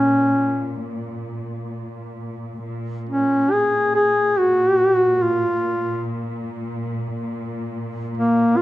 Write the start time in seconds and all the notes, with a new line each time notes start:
Already playing: A#2 C#4
2.64 A#2
3.09 C#4
3.51 G#4
3.95 G#4
4.38 F#4
5.23 F4
8.18 A#3
8.57 F4